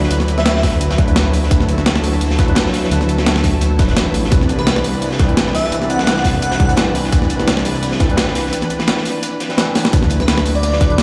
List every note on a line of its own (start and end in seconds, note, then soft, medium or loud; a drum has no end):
0.00 0.09 F#3 medium
0.00 4.28 F#3 medium
0.00 0.10 D4 medium
0.00 0.11 E4 medium
0.00 4.28 E4 medium
0.00 0.12 B4 loud
0.00 1.48 B4 medium
0.00 snare soft
0.09 1.50 D2 loud
0.09 0.96 F#3 medium
0.09 0.96 D4 medium
0.09 0.97 E4 medium
0.09 0.97 B4 medium
0.09 closed hi-hat loud
0.09 closed hi-hat medium
0.20 snare soft
0.20 closed hi-hat soft
0.28 closed hi-hat medium
0.38 0.63 E5 medium
0.38 snare medium
0.38 snare soft
0.38 closed hi-hat soft
0.45 snare loud
0.45 closed hi-hat medium
0.55 snare medium
0.63 kick medium
0.63 snare loud
0.63 closed hi-hat medium
0.63 open hi-hat medium
0.81 closed hi-hat medium
0.91 snare loud
0.91 closed hi-hat medium
0.98 1.05 F#3 medium
0.98 1.06 D4 medium
0.98 1.06 E4 medium
0.98 1.07 B4 loud
0.98 kick loud
0.98 closed hi-hat medium
1.06 1.48 F#3 medium
1.06 1.49 D4 medium
1.06 1.49 E4 medium
1.06 1.50 B4 medium
1.06 closed hi-hat medium
1.06 closed hi-hat soft
1.16 snare loud
1.16 closed hi-hat loud
1.16 closed hi-hat medium
1.33 closed hi-hat medium
1.33 open hi-hat medium
1.43 snare soft
1.49 2.20 D2 medium
1.49 2.36 F#3 medium
1.49 2.36 D4 medium
1.49 2.37 E4 medium
1.49 4.29 A4 medium
1.49 2.38 B4 medium
1.49 kick loud
1.49 closed hi-hat loud
1.60 snare soft
1.69 closed hi-hat medium
1.78 snare soft
1.78 closed hi-hat soft
1.86 snare loud
1.86 closed hi-hat medium
1.96 snare soft
1.96 snare medium
2.04 closed hi-hat medium
2.04 open hi-hat medium
2.13 closed hi-hat soft
2.21 2.55 D2 medium
2.21 closed hi-hat loud
2.21 open hi-hat medium
2.30 snare medium
2.38 2.45 F#3 medium
2.38 2.46 D4 medium
2.38 2.47 E4 medium
2.38 2.47 B4 loud
2.38 kick loud
2.38 snare soft
2.38 closed hi-hat medium
2.46 2.89 F#3 medium
2.46 2.89 D4 medium
2.46 2.90 E4 medium
2.46 2.90 B4 medium
2.46 closed hi-hat soft
2.55 snare loud
2.55 closed hi-hat medium
2.66 snare medium
2.73 snare soft
2.73 closed hi-hat medium
2.73 open hi-hat medium
2.84 snare medium
2.90 3.81 D2 medium
2.90 3.76 F#3 medium
2.90 3.77 D4 medium
2.90 3.77 E4 medium
2.90 3.78 B4 medium
2.90 closed hi-hat medium
2.90 closed hi-hat loud
3.01 snare soft
3.01 closed hi-hat soft
3.09 closed hi-hat medium
3.18 snare medium
3.18 snare soft
3.18 closed hi-hat soft
3.26 snare loud
3.26 closed hi-hat medium
3.35 snare medium
3.43 kick medium
3.43 snare soft
3.43 closed hi-hat medium
3.43 open hi-hat medium
3.61 closed hi-hat medium
3.78 3.95 D1 medium
3.78 3.86 F#3 medium
3.78 3.87 D4 medium
3.78 3.87 E4 medium
3.78 3.87 B4 loud
3.78 kick loud
3.78 snare soft
3.78 closed hi-hat medium
3.87 4.29 F#3 medium
3.87 4.29 D4 medium
3.87 4.30 E4 medium
3.87 4.31 B4 medium
3.87 snare medium
3.87 closed hi-hat soft
3.96 4.30 A1 medium
3.96 snare loud
3.96 closed hi-hat medium
4.14 closed hi-hat medium
4.14 open hi-hat medium
4.24 snare soft
4.30 5.71 C2 loud
4.30 5.17 E3 medium
4.30 9.89 E3 medium
4.30 5.17 C4 medium
4.30 9.89 D4 medium
4.30 5.18 D4 medium
4.30 9.89 B4 medium
4.30 5.18 B4 medium
4.30 kick loud
4.30 closed hi-hat medium
4.41 snare soft
4.49 closed hi-hat medium
4.59 4.64 B4 medium
4.59 snare soft
4.59 closed hi-hat soft
4.67 4.73 B4 medium
4.67 snare loud
4.67 closed hi-hat medium
4.76 snare soft
4.76 snare medium
4.84 closed hi-hat medium
4.84 open hi-hat medium
4.93 closed hi-hat soft
5.02 closed hi-hat medium
5.02 open hi-hat medium
5.11 snare medium
5.19 5.26 E3 medium
5.19 5.27 C4 medium
5.19 5.28 D4 medium
5.19 5.28 B4 loud
5.19 kick loud
5.19 snare medium
5.19 closed hi-hat medium
5.27 5.69 E3 medium
5.27 5.70 C4 medium
5.27 5.70 D4 medium
5.27 5.71 B4 medium
5.27 closed hi-hat soft
5.37 snare loud
5.37 closed hi-hat medium
5.46 snare medium
5.54 5.76 E5 loud
5.54 snare soft
5.54 closed hi-hat medium
5.54 open hi-hat medium
5.64 snare soft
5.71 7.11 C2 loud
5.71 6.57 E3 medium
5.71 6.58 C4 medium
5.71 6.58 D4 medium
5.71 6.59 B4 medium
5.71 closed hi-hat medium
5.82 snare soft
5.82 closed hi-hat soft
5.89 6.25 F#5 loud
5.89 closed hi-hat medium
5.99 snare medium
5.99 snare soft
5.99 closed hi-hat soft
6.07 snare loud
6.07 closed hi-hat medium
6.16 snare medium
6.24 kick medium
6.24 snare medium
6.24 closed hi-hat medium
6.24 open hi-hat medium
6.42 6.69 F#5 loud
6.42 closed hi-hat medium
6.42 closed hi-hat loud
6.51 snare loud
6.51 closed hi-hat medium
6.59 6.67 E3 medium
6.59 6.68 C4 medium
6.59 6.68 D4 medium
6.59 6.68 B4 loud
6.59 kick loud
6.59 closed hi-hat medium
6.68 7.10 E3 medium
6.68 7.10 C4 medium
6.68 7.11 D4 medium
6.68 7.11 B4 medium
6.68 closed hi-hat medium
6.68 closed hi-hat soft
6.77 snare loud
6.77 closed hi-hat medium
6.95 closed hi-hat medium
6.95 open hi-hat medium
7.04 snare soft
7.11 7.81 C2 loud
7.11 7.97 E3 medium
7.11 7.98 C4 medium
7.11 7.99 D4 medium
7.11 7.99 B4 medium
7.11 kick loud
7.11 closed hi-hat medium
7.11 closed hi-hat loud
7.22 snare soft
7.30 closed hi-hat medium
7.40 snare soft
7.40 closed hi-hat soft
7.48 snare loud
7.48 closed hi-hat medium
7.57 snare soft
7.57 snare medium
7.65 closed hi-hat medium
7.65 open hi-hat medium
7.75 closed hi-hat soft
7.83 8.16 C2 medium
7.83 closed hi-hat loud
7.83 open hi-hat medium
7.92 snare medium
7.99 8.07 E3 medium
7.99 8.08 C4 medium
7.99 8.08 D4 medium
7.99 8.09 B4 loud
7.99 kick loud
7.99 snare soft
7.99 closed hi-hat medium
8.08 8.50 E3 medium
8.08 8.51 C4 medium
8.08 8.51 D4 medium
8.08 8.52 B4 medium
8.08 closed hi-hat soft
8.17 snare loud
8.17 closed hi-hat loud
8.17 closed hi-hat medium
8.27 snare medium
8.35 snare soft
8.35 closed hi-hat medium
8.35 open hi-hat medium
8.46 snare soft
8.51 9.38 E3 medium
8.51 9.38 C4 medium
8.51 9.39 D4 medium
8.51 9.39 B4 medium
8.51 closed hi-hat loud
8.51 closed hi-hat medium
8.61 snare soft
8.61 closed hi-hat soft
8.70 closed hi-hat medium
8.79 snare medium
8.79 snare soft
8.79 closed hi-hat soft
8.87 snare loud
8.87 closed hi-hat medium
8.87 closed hi-hat loud
8.97 snare medium
9.05 snare soft
9.05 closed hi-hat medium
9.05 open hi-hat medium
9.23 closed hi-hat medium
9.23 closed hi-hat loud
9.40 snare soft
9.40 closed hi-hat medium
9.49 9.56 E3 medium
9.49 9.57 C4 medium
9.49 9.57 D4 medium
9.49 9.57 B4 medium
9.49 snare medium
9.49 closed hi-hat soft
9.57 9.91 E3 loud
9.57 9.91 C4 medium
9.57 9.91 D4 medium
9.57 9.92 B4 loud
9.57 snare loud
9.57 closed hi-hat loud
9.57 closed hi-hat medium
9.75 snare medium
9.75 closed hi-hat medium
9.75 open hi-hat medium
9.85 snare loud
9.85 closed hi-hat soft
9.92 11.03 D2 loud
9.92 10.78 F#3 medium
9.92 11.03 F#3 medium
9.92 10.79 D4 medium
9.92 11.03 E4 medium
9.92 10.79 E4 medium
9.92 11.03 B4 medium
9.92 10.80 B4 medium
9.92 kick loud
9.92 closed hi-hat loud
9.92 closed hi-hat medium
10.02 snare soft
10.10 closed hi-hat medium
10.20 10.25 B4 medium
10.20 snare soft
10.20 closed hi-hat soft
10.28 10.34 B4 medium
10.28 snare loud
10.28 closed hi-hat medium
10.37 snare soft
10.37 snare medium
10.45 closed hi-hat medium
10.45 open hi-hat medium
10.55 11.03 D5 loud
10.55 closed hi-hat soft
10.63 closed hi-hat loud
10.63 open hi-hat medium
10.72 snare medium
10.80 10.87 F#3 medium
10.80 10.88 D4 medium
10.80 10.89 E4 medium
10.80 10.89 B4 loud
10.80 kick loud
10.80 snare soft
10.80 closed hi-hat medium
10.89 11.03 F#3 medium
10.89 11.03 D4 medium
10.89 11.03 E4 medium
10.89 11.03 B4 medium
10.89 closed hi-hat soft
10.98 snare loud
10.98 closed hi-hat loud
10.98 closed hi-hat medium